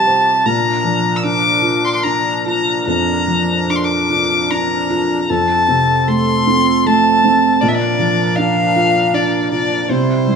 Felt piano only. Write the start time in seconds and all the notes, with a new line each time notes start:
Already playing: C3 G3 G4 C5
0.07 C5
0.46 A#2
0.84 F3
1.24 D4
1.62 F4
2.04 D4
2.46 F4
2.87 F2
3.28 F3
3.70 D4
4.11 F4
4.50 D4
4.90 F4
5.30 F2
5.68 C3
6.08 A3
6.47 C4
6.86 A3
7.24 C4
7.62 A#2
7.99 F3
8.38 D4
8.76 F4
9.13 D4
9.52 F4
9.90 C3
10.27 G3